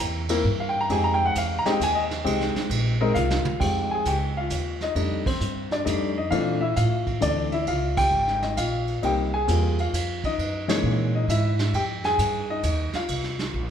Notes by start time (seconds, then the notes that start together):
Already playing: A#3 C4 E4 G4
0.00 E2
0.29 A#3 C4 E4 A#4, snare, ride
0.44 G2
0.60 F5
0.69 G5
0.81 A#5
0.89 F2 G#3 C4 D#4 G4 G#5, ride
1.04 A#5
1.14 G5
1.26 F#5
1.35 E2 F5, hi-hat pedal, ride
1.59 A#5
1.65 G#3 C4 D#4 G4, muted upright bass stroke, snare, ride
1.72 G5
1.80 D#2 G#5, hi-hat pedal, ride
1.95 D#5
2.11 snare, ride
2.24 C2 G#3 C4 D#4 G4, ride
2.41 snare
2.56 muted upright bass stroke, snare
2.70 A#1, ride
3.01 G#3 C4 D#4 A#4 D#5
3.10 D#5
3.14 C2 F4 F5, hi-hat pedal
3.30 snare
3.45 muted upright bass stroke, mid tom
3.60 F2 G#3 C4 D#4 G4 G5, kick, crash
3.91 G#4 G#5
4.05 C#2 G4 G5, hi-hat pedal, ride
4.37 F4 F5
4.50 D#2, hi-hat pedal, ride
4.81 D#4 D#5, snare
4.95 F2 G3 A3 D4 D#4, ride
5.26 C4 C5, kick, crash
5.40 G2, hi-hat pedal
5.71 D4 D5, snare
5.84 F2 G3 A3 D4 D#4, hi-hat pedal, ride
6.18 D#4 D#5
6.31 A#2 E3 A3 C4 D4 F4 F5, ride
6.61 E4 E5
6.76 A2 F4 F5, hi-hat pedal, ride
7.07 kick, ride
7.20 D2 E3 A3 C4 D4 D5, hi-hat pedal, ride
7.24 D4
7.52 E4 E5, ride
7.67 C#2 F4 F5, ride
7.97 G4 G5, kick, crash
8.11 G#1
8.28 snare
8.42 D#4 D#5, snare
8.57 A#1 F4 F5, hi-hat pedal, ride
8.88 ride
9.02 C2 G3 A#3 C4 D#4 G5, ride
9.06 G4
9.34 G#4 G#5
9.47 E2 G3 A#3 C4 F4, hi-hat pedal, ride
9.79 F4 F5, ride
9.93 F2, hi-hat pedal, ride
10.24 D#4 D#5, kick, ride
10.38 F#2, ride
10.68 E3 G#3 A#3 C#4 D#4 C#5, snare, ride
10.83 A#2
11.15 D#4 D#5
11.28 G#2 E4 E5, hi-hat pedal, ride
11.59 snare, ride
11.73 F2 G4 G5, ride
12.04 G#4 G#5, snare
12.18 G2, hi-hat pedal, ride
12.50 D#4 D#5
12.63 D#2, hi-hat pedal, ride
12.93 F4 F5, muted upright bass stroke, snare, ride
13.08 C2, ride
13.24 snare
13.39 snare
13.54 A#1